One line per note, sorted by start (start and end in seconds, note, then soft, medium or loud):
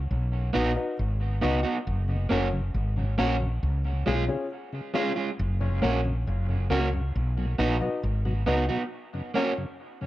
0.11 0.51 B1 loud
0.53 0.75 A#1 medium
0.53 0.71 B3 medium
0.53 0.70 D#4 medium
0.53 0.71 D#4 loud
0.53 0.70 F#4 medium
0.53 0.71 F#4 medium
0.53 0.70 B4 medium
0.53 0.70 D#5 loud
0.75 0.92 D#4 medium
0.75 0.92 F#4 medium
0.75 0.92 B4 medium
0.75 0.93 D#5 medium
0.99 1.40 G#1 medium
1.41 1.63 C#2 medium
1.41 1.59 B3 medium
1.41 1.58 D#4 medium
1.41 1.59 D#4 medium
1.41 1.58 F#4 medium
1.41 1.60 F#4 medium
1.41 1.58 B4 medium
1.41 1.59 D#5 loud
1.63 1.78 B3 medium
1.63 1.77 D#4 medium
1.63 1.77 F#4 medium
1.63 1.73 B4 soft
1.63 1.73 D#5 soft
1.87 2.27 F#1 loud
2.08 2.17 F#2 medium
2.08 2.17 C#3 medium
2.29 2.71 F#1 medium
2.29 2.47 A#3 medium
2.29 2.39 A#3 medium
2.29 2.46 C#4 medium
2.29 2.39 C#4 medium
2.29 2.47 C#4 medium
2.29 2.46 F#4 medium
2.29 2.39 F#4 medium
2.29 2.48 F#4 medium
2.29 2.47 A#4 medium
2.29 2.47 C#5 medium
2.53 2.61 F#2 medium
2.53 2.61 C#3 medium
2.74 3.15 G#1 medium
2.96 3.05 F#2 medium
2.96 3.05 C#3 medium
3.18 3.60 A#1 medium
3.18 3.35 A#3 medium
3.18 3.27 A#3 medium
3.18 3.34 C#4 medium
3.18 3.27 C#4 medium
3.18 3.35 C#4 medium
3.18 3.27 F#4 medium
3.18 3.35 F#4 medium
3.18 3.36 F#4 loud
3.18 3.35 A#4 medium
3.18 3.35 C#5 loud
3.40 3.49 F#2 medium
3.40 3.49 C#3 medium
3.63 4.03 C#2 medium
3.85 3.93 C#3 medium
4.06 4.27 B1 loud
4.06 4.15 G#3 medium
4.06 4.23 G#3 medium
4.06 4.15 C#4 medium
4.06 4.23 C#4 loud
4.06 4.24 C#4 medium
4.06 4.15 F4 medium
4.06 4.23 F4 medium
4.06 4.24 F4 medium
4.06 4.23 G#4 medium
4.06 4.23 C#5 medium
4.28 4.37 C#3 medium
4.28 4.44 C#4 medium
4.28 4.44 F4 medium
4.28 4.45 G#4 medium
4.28 4.45 C#5 medium
4.73 4.81 C#3 medium
4.94 5.11 G#3 medium
4.94 5.03 G#3 medium
4.94 5.10 C#4 medium
4.94 5.12 C#4 medium
4.94 5.03 C#4 medium
4.94 5.11 F4 medium
4.94 5.12 F4 medium
4.94 5.04 F4 medium
4.94 5.11 G#4 medium
4.94 5.11 C#5 loud
5.16 5.30 G#3 soft
5.16 5.30 C#4 medium
5.16 5.30 F4 medium
5.39 5.80 F#1 loud
5.61 5.69 F#2 medium
5.61 5.69 C#3 medium
5.81 6.24 A#1 medium
5.81 5.99 A#3 medium
5.81 5.91 A#3 medium
5.81 5.98 C#4 medium
5.81 5.91 C#4 medium
5.81 6.00 C#4 medium
5.81 5.98 F#4 medium
5.81 5.91 F#4 medium
5.81 6.00 F#4 medium
5.81 5.99 A#4 medium
5.81 5.99 C#5 medium
6.05 6.13 F#2 medium
6.05 6.13 C#3 medium
6.27 6.68 F#1 medium
6.49 6.57 F#2 medium
6.49 6.57 C#3 medium
6.70 7.12 C#2 medium
6.70 6.87 A#3 medium
6.70 6.79 A#3 medium
6.70 6.87 C#4 medium
6.70 6.88 C#4 medium
6.70 6.80 C#4 medium
6.70 6.87 F#4 medium
6.70 6.80 F#4 medium
6.70 6.88 F#4 loud
6.70 6.87 A#4 medium
6.70 6.87 C#5 loud
6.93 7.01 F#2 medium
6.93 7.02 C#3 medium
7.16 7.56 B1 loud
7.38 7.46 B2 medium
7.38 7.46 F#3 medium
7.58 7.79 A#1 medium
7.58 7.76 B3 medium
7.58 7.67 B3 medium
7.58 7.75 D#4 medium
7.58 7.68 D#4 medium
7.58 7.76 D#4 medium
7.58 7.75 F#4 medium
7.58 7.68 F#4 medium
7.58 7.76 F#4 medium
7.58 7.75 B4 medium
7.58 7.75 D#5 loud
7.81 7.90 B2 medium
7.81 7.90 F#3 medium
7.81 7.97 D#4 medium
7.81 7.97 F#4 medium
7.81 7.97 B4 medium
7.81 7.97 D#5 medium
8.03 8.44 G#1 loud
8.25 8.34 B2 medium
8.25 8.34 F#3 medium
8.46 8.68 C#2 medium
8.46 8.64 B3 medium
8.46 8.56 B3 medium
8.46 8.63 D#4 loud
8.46 8.64 D#4 medium
8.46 8.56 D#4 medium
8.46 8.63 F#4 medium
8.46 8.56 F#4 medium
8.46 8.65 F#4 medium
8.46 8.63 B4 medium
8.46 8.64 D#5 loud
8.69 8.78 B2 medium
8.69 8.78 F#3 medium
8.69 8.83 B3 soft
8.69 8.82 D#4 medium
8.69 8.82 F#4 medium
8.69 8.78 B4 soft
8.69 8.78 D#5 soft
9.14 9.22 F#2 medium
9.14 9.22 C#3 medium
9.34 9.52 A#3 medium
9.34 9.44 A#3 medium
9.34 9.51 C#4 medium
9.34 9.52 C#4 medium
9.34 9.44 C#4 medium
9.34 9.51 F#4 medium
9.34 9.44 F#4 medium
9.34 9.53 F#4 medium
9.34 9.52 A#4 medium
9.34 9.52 C#5 loud
9.58 9.66 F#2 medium
9.58 9.66 C#3 medium
10.01 10.07 F#2 medium
10.01 10.07 C#3 medium